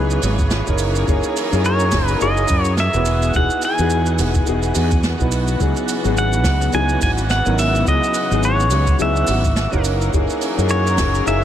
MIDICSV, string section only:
0, 0, Header, 1, 2, 480
1, 0, Start_track
1, 0, Tempo, 566038
1, 912, Time_signature, 4, 2, 24, 8
1, 9702, End_track
2, 0, Start_track
2, 0, Title_t, "String section"
2, 0, Program_c, 0, 48
2, 0, Note_on_c, 0, 49, 79
2, 0, Note_on_c, 0, 52, 78
2, 0, Note_on_c, 0, 56, 75
2, 0, Note_on_c, 0, 59, 74
2, 0, Note_on_c, 0, 68, 96
2, 0, Note_on_c, 0, 73, 78
2, 637, Note_off_c, 0, 59, 0
2, 638, Note_off_c, 0, 49, 0
2, 638, Note_off_c, 0, 56, 0
2, 664, Note_on_c, 0, 54, 84
2, 664, Note_on_c, 0, 70, 93
2, 665, Note_on_c, 0, 61, 79
2, 2558, Note_off_c, 0, 52, 0
2, 2559, Note_off_c, 0, 73, 0
2, 2569, Note_off_c, 0, 54, 0
2, 2569, Note_off_c, 0, 61, 0
2, 2569, Note_off_c, 0, 70, 0
2, 2584, Note_on_c, 0, 52, 80
2, 2584, Note_on_c, 0, 66, 76
2, 2586, Note_on_c, 0, 78, 75
2, 2587, Note_on_c, 0, 59, 76
2, 4716, Note_off_c, 0, 68, 0
2, 4726, Note_off_c, 0, 52, 0
2, 4749, Note_on_c, 0, 52, 78
2, 4750, Note_on_c, 0, 49, 87
2, 8314, Note_off_c, 0, 66, 0
2, 8315, Note_off_c, 0, 59, 0
2, 8317, Note_off_c, 0, 49, 0
2, 8350, Note_on_c, 0, 61, 82
2, 8351, Note_on_c, 0, 70, 92
2, 8352, Note_on_c, 0, 54, 85
2, 8352, Note_on_c, 0, 68, 81
2, 9702, Note_off_c, 0, 52, 0
2, 9702, Note_off_c, 0, 54, 0
2, 9702, Note_off_c, 0, 61, 0
2, 9702, Note_off_c, 0, 68, 0
2, 9702, Note_off_c, 0, 70, 0
2, 9702, Note_off_c, 0, 78, 0
2, 9702, End_track
0, 0, End_of_file